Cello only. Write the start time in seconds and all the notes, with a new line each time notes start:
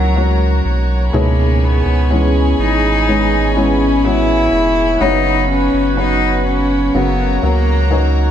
Already playing: F#3
1.15 A#3
1.63 B3
2.12 C#4
2.60 D#4
3.57 C#4
4.05 E4
5.01 D#4
5.50 C#4
5.99 D#4
6.47 C#4
6.96 B3
7.44 A#3